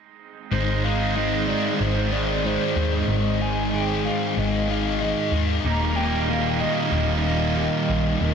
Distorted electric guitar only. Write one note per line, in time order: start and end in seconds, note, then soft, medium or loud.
0.51 1.15 G#2 medium
0.51 0.85 D#3 medium
0.51 0.84 G#3 medium
0.84 1.16 D#3 medium
0.84 1.18 G#3 medium
1.16 1.79 G#2 medium
1.16 1.49 D#3 medium
1.16 1.47 G#3 medium
1.47 1.80 D#3 medium
1.47 1.81 G#3 medium
1.80 2.43 G#2 medium
1.80 2.14 D#3 medium
1.80 2.11 G#3 medium
2.12 2.44 D#3 soft
2.12 2.46 G#3 medium
2.44 3.06 G#2 medium
2.44 2.77 D#3 medium
2.44 2.74 G#3 medium
2.76 3.08 D#3 medium
2.76 3.09 G#3 medium
3.08 3.70 G#2 medium
3.08 3.41 D#3 medium
3.08 3.38 G#3 medium
3.40 3.72 D#3 medium
3.40 3.73 G#3 medium
3.72 4.35 G#2 medium
3.72 4.05 D#3 medium
3.72 4.03 G#3 medium
4.04 4.37 D#3 medium
4.04 4.38 G#3 medium
4.36 5.00 G#2 medium
4.36 4.70 D#3 medium
4.36 4.67 G#3 medium
4.69 5.02 D#3 medium
4.69 5.03 G#3 medium
5.01 5.63 G#2 medium
5.01 5.35 D#3 medium
5.01 5.33 G#3 medium
5.34 5.65 D#3 medium
5.34 5.63 G#3 medium
5.66 6.28 D#2 medium
5.66 5.99 A#2 medium
5.66 5.97 D#3 medium
5.97 6.29 A#2 medium
5.97 6.31 D#3 medium
6.29 6.92 D#2 medium
6.29 6.62 A#2 medium
6.29 6.60 D#3 medium
6.61 6.92 A#2 medium
6.61 6.94 D#3 medium
6.92 7.54 D#2 medium
6.92 7.27 A#2 medium
6.92 7.23 D#3 loud
7.25 7.56 A#2 medium
7.25 7.57 D#3 medium
7.55 8.18 D#2 medium
7.55 7.89 A#2 medium
7.55 7.86 D#3 medium
7.87 8.20 A#2 medium
7.87 8.21 D#3 medium
8.19 8.34 D#2 medium
8.19 8.34 A#2 loud
8.19 8.34 D#3 loud